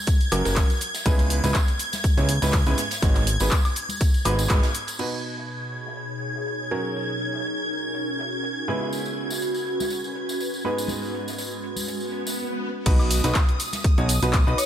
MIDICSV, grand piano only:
0, 0, Header, 1, 2, 480
1, 0, Start_track
1, 0, Key_signature, 5, "major"
1, 0, Tempo, 491803
1, 1032, Time_signature, 4, 2, 24, 8
1, 14306, End_track
2, 0, Start_track
2, 0, Title_t, "Grand piano"
2, 0, Program_c, 0, 0
2, 312, Note_on_c, 0, 54, 100
2, 312, Note_on_c, 0, 61, 86
2, 312, Note_on_c, 0, 66, 88
2, 312, Note_on_c, 0, 70, 107
2, 423, Note_off_c, 0, 54, 0
2, 423, Note_off_c, 0, 61, 0
2, 423, Note_off_c, 0, 66, 0
2, 424, Note_off_c, 0, 70, 0
2, 443, Note_on_c, 0, 54, 92
2, 443, Note_on_c, 0, 61, 82
2, 443, Note_on_c, 0, 66, 83
2, 443, Note_on_c, 0, 70, 95
2, 646, Note_off_c, 0, 54, 0
2, 646, Note_off_c, 0, 61, 0
2, 646, Note_off_c, 0, 66, 0
2, 646, Note_off_c, 0, 70, 0
2, 1032, Note_on_c, 0, 49, 96
2, 1032, Note_on_c, 0, 56, 91
2, 1032, Note_on_c, 0, 59, 86
2, 1032, Note_on_c, 0, 61, 90
2, 1032, Note_on_c, 0, 64, 89
2, 1032, Note_on_c, 0, 71, 112
2, 1372, Note_off_c, 0, 49, 0
2, 1372, Note_off_c, 0, 56, 0
2, 1372, Note_off_c, 0, 59, 0
2, 1372, Note_off_c, 0, 61, 0
2, 1372, Note_off_c, 0, 64, 0
2, 1372, Note_off_c, 0, 71, 0
2, 1403, Note_on_c, 0, 49, 86
2, 1403, Note_on_c, 0, 56, 82
2, 1403, Note_on_c, 0, 59, 79
2, 1403, Note_on_c, 0, 61, 81
2, 1403, Note_on_c, 0, 64, 78
2, 1403, Note_on_c, 0, 71, 93
2, 1521, Note_off_c, 0, 71, 0
2, 1522, Note_off_c, 0, 49, 0
2, 1522, Note_off_c, 0, 56, 0
2, 1522, Note_off_c, 0, 59, 0
2, 1522, Note_off_c, 0, 61, 0
2, 1522, Note_off_c, 0, 64, 0
2, 2123, Note_on_c, 0, 49, 88
2, 2123, Note_on_c, 0, 56, 80
2, 2123, Note_on_c, 0, 59, 78
2, 2123, Note_on_c, 0, 61, 80
2, 2123, Note_on_c, 0, 64, 78
2, 2123, Note_on_c, 0, 73, 95
2, 2241, Note_off_c, 0, 49, 0
2, 2241, Note_off_c, 0, 56, 0
2, 2241, Note_off_c, 0, 59, 0
2, 2241, Note_off_c, 0, 61, 0
2, 2241, Note_off_c, 0, 64, 0
2, 2241, Note_off_c, 0, 73, 0
2, 2363, Note_on_c, 0, 49, 81
2, 2363, Note_on_c, 0, 56, 76
2, 2363, Note_on_c, 0, 59, 75
2, 2363, Note_on_c, 0, 61, 76
2, 2363, Note_on_c, 0, 64, 73
2, 2363, Note_on_c, 0, 71, 93
2, 2481, Note_off_c, 0, 49, 0
2, 2481, Note_off_c, 0, 56, 0
2, 2481, Note_off_c, 0, 59, 0
2, 2481, Note_off_c, 0, 61, 0
2, 2481, Note_off_c, 0, 64, 0
2, 2481, Note_off_c, 0, 71, 0
2, 2603, Note_on_c, 0, 44, 99
2, 2603, Note_on_c, 0, 56, 88
2, 2603, Note_on_c, 0, 59, 92
2, 2603, Note_on_c, 0, 61, 92
2, 2603, Note_on_c, 0, 64, 91
2, 2603, Note_on_c, 0, 71, 111
2, 2699, Note_off_c, 0, 44, 0
2, 2699, Note_off_c, 0, 56, 0
2, 2699, Note_off_c, 0, 59, 0
2, 2699, Note_off_c, 0, 61, 0
2, 2699, Note_off_c, 0, 64, 0
2, 2699, Note_off_c, 0, 71, 0
2, 2951, Note_on_c, 0, 66, 84
2, 2952, Note_on_c, 0, 44, 95
2, 2952, Note_on_c, 0, 56, 84
2, 2952, Note_on_c, 0, 59, 87
2, 2952, Note_on_c, 0, 63, 86
2, 2952, Note_on_c, 0, 73, 102
2, 3161, Note_off_c, 0, 44, 0
2, 3161, Note_off_c, 0, 56, 0
2, 3161, Note_off_c, 0, 59, 0
2, 3161, Note_off_c, 0, 63, 0
2, 3161, Note_off_c, 0, 66, 0
2, 3161, Note_off_c, 0, 73, 0
2, 3323, Note_on_c, 0, 44, 75
2, 3323, Note_on_c, 0, 59, 69
2, 3323, Note_on_c, 0, 66, 68
2, 3323, Note_on_c, 0, 71, 83
2, 3324, Note_on_c, 0, 56, 71
2, 3324, Note_on_c, 0, 63, 70
2, 3442, Note_off_c, 0, 44, 0
2, 3442, Note_off_c, 0, 56, 0
2, 3442, Note_off_c, 0, 59, 0
2, 3442, Note_off_c, 0, 63, 0
2, 3442, Note_off_c, 0, 66, 0
2, 3442, Note_off_c, 0, 71, 0
2, 4152, Note_on_c, 0, 44, 92
2, 4153, Note_on_c, 0, 56, 89
2, 4153, Note_on_c, 0, 59, 84
2, 4153, Note_on_c, 0, 63, 84
2, 4153, Note_on_c, 0, 66, 86
2, 4153, Note_on_c, 0, 71, 105
2, 4292, Note_off_c, 0, 44, 0
2, 4292, Note_off_c, 0, 56, 0
2, 4292, Note_off_c, 0, 59, 0
2, 4292, Note_off_c, 0, 63, 0
2, 4292, Note_off_c, 0, 66, 0
2, 4292, Note_off_c, 0, 71, 0
2, 4392, Note_on_c, 0, 44, 93
2, 4392, Note_on_c, 0, 56, 87
2, 4392, Note_on_c, 0, 59, 87
2, 4392, Note_on_c, 0, 63, 88
2, 4392, Note_on_c, 0, 66, 85
2, 4392, Note_on_c, 0, 71, 104
2, 4531, Note_off_c, 0, 59, 0
2, 4531, Note_off_c, 0, 66, 0
2, 4531, Note_off_c, 0, 71, 0
2, 4532, Note_off_c, 0, 44, 0
2, 4532, Note_off_c, 0, 56, 0
2, 4532, Note_off_c, 0, 63, 0
2, 4872, Note_on_c, 0, 47, 71
2, 4872, Note_on_c, 0, 63, 63
2, 4872, Note_on_c, 0, 66, 64
2, 4872, Note_on_c, 0, 71, 77
2, 6526, Note_off_c, 0, 47, 0
2, 6526, Note_off_c, 0, 63, 0
2, 6526, Note_off_c, 0, 66, 0
2, 6526, Note_off_c, 0, 71, 0
2, 6552, Note_on_c, 0, 54, 70
2, 6552, Note_on_c, 0, 61, 65
2, 6552, Note_on_c, 0, 66, 67
2, 6552, Note_on_c, 0, 70, 79
2, 8446, Note_off_c, 0, 54, 0
2, 8446, Note_off_c, 0, 61, 0
2, 8446, Note_off_c, 0, 66, 0
2, 8446, Note_off_c, 0, 70, 0
2, 8472, Note_on_c, 0, 49, 72
2, 8472, Note_on_c, 0, 56, 67
2, 8472, Note_on_c, 0, 59, 66
2, 8472, Note_on_c, 0, 61, 65
2, 8472, Note_on_c, 0, 64, 65
2, 8473, Note_on_c, 0, 71, 79
2, 10366, Note_off_c, 0, 49, 0
2, 10366, Note_off_c, 0, 56, 0
2, 10366, Note_off_c, 0, 59, 0
2, 10366, Note_off_c, 0, 61, 0
2, 10366, Note_off_c, 0, 64, 0
2, 10366, Note_off_c, 0, 71, 0
2, 10392, Note_on_c, 0, 44, 74
2, 10392, Note_on_c, 0, 56, 67
2, 10392, Note_on_c, 0, 59, 67
2, 10392, Note_on_c, 0, 63, 68
2, 10392, Note_on_c, 0, 66, 66
2, 10392, Note_on_c, 0, 71, 82
2, 12072, Note_off_c, 0, 44, 0
2, 12072, Note_off_c, 0, 56, 0
2, 12072, Note_off_c, 0, 59, 0
2, 12072, Note_off_c, 0, 63, 0
2, 12072, Note_off_c, 0, 66, 0
2, 12072, Note_off_c, 0, 71, 0
2, 12553, Note_on_c, 0, 47, 101
2, 12553, Note_on_c, 0, 63, 87
2, 12553, Note_on_c, 0, 66, 89
2, 12553, Note_on_c, 0, 71, 108
2, 12892, Note_off_c, 0, 47, 0
2, 12892, Note_off_c, 0, 63, 0
2, 12892, Note_off_c, 0, 66, 0
2, 12892, Note_off_c, 0, 71, 0
2, 12924, Note_on_c, 0, 47, 89
2, 12924, Note_on_c, 0, 63, 79
2, 12924, Note_on_c, 0, 66, 81
2, 12924, Note_on_c, 0, 71, 99
2, 13042, Note_off_c, 0, 47, 0
2, 13042, Note_off_c, 0, 63, 0
2, 13042, Note_off_c, 0, 66, 0
2, 13042, Note_off_c, 0, 71, 0
2, 13643, Note_on_c, 0, 47, 88
2, 13643, Note_on_c, 0, 66, 83
2, 13643, Note_on_c, 0, 73, 96
2, 13644, Note_on_c, 0, 63, 80
2, 13762, Note_off_c, 0, 47, 0
2, 13762, Note_off_c, 0, 63, 0
2, 13762, Note_off_c, 0, 66, 0
2, 13762, Note_off_c, 0, 73, 0
2, 13884, Note_on_c, 0, 47, 82
2, 13884, Note_on_c, 0, 63, 75
2, 13884, Note_on_c, 0, 66, 75
2, 13884, Note_on_c, 0, 71, 94
2, 14002, Note_off_c, 0, 47, 0
2, 14002, Note_off_c, 0, 63, 0
2, 14002, Note_off_c, 0, 66, 0
2, 14002, Note_off_c, 0, 71, 0
2, 14123, Note_on_c, 0, 63, 102
2, 14123, Note_on_c, 0, 66, 92
2, 14124, Note_on_c, 0, 71, 111
2, 14219, Note_off_c, 0, 63, 0
2, 14219, Note_off_c, 0, 66, 0
2, 14219, Note_off_c, 0, 71, 0
2, 14306, End_track
0, 0, End_of_file